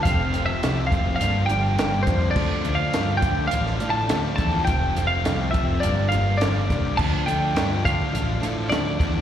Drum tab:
CC |----------------|x---------------|----------------|x---------------|
HH |x-x-x-x-x-x-x-x-|--x-x-x-x-x-x-x-|x-x-x-x-x-x-x-x-|--x-x-x-x-x-x-x-|
SD |----o-------o---|----o----o--o---|----o-------o---|----o-------o---|
BD |o-----o-------o-|o-----o-------o-|o-----o-------o-|o-----o-------o-|